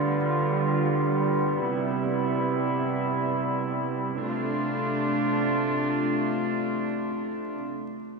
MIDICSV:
0, 0, Header, 1, 2, 480
1, 0, Start_track
1, 0, Tempo, 500000
1, 7869, End_track
2, 0, Start_track
2, 0, Title_t, "String section"
2, 0, Program_c, 0, 48
2, 0, Note_on_c, 0, 50, 72
2, 0, Note_on_c, 0, 55, 65
2, 0, Note_on_c, 0, 59, 69
2, 0, Note_on_c, 0, 65, 79
2, 1481, Note_off_c, 0, 65, 0
2, 1483, Note_off_c, 0, 50, 0
2, 1504, Note_on_c, 0, 64, 75
2, 1509, Note_on_c, 0, 48, 71
2, 4000, Note_off_c, 0, 59, 0
2, 4004, Note_off_c, 0, 55, 0
2, 4011, Note_off_c, 0, 64, 0
2, 4014, Note_off_c, 0, 48, 0
2, 4046, Note_on_c, 0, 62, 61
2, 4048, Note_on_c, 0, 65, 78
2, 4049, Note_on_c, 0, 57, 60
2, 4050, Note_on_c, 0, 48, 64
2, 7303, Note_off_c, 0, 62, 0
2, 7304, Note_off_c, 0, 65, 0
2, 7305, Note_off_c, 0, 48, 0
2, 7305, Note_off_c, 0, 57, 0
2, 7869, End_track
0, 0, End_of_file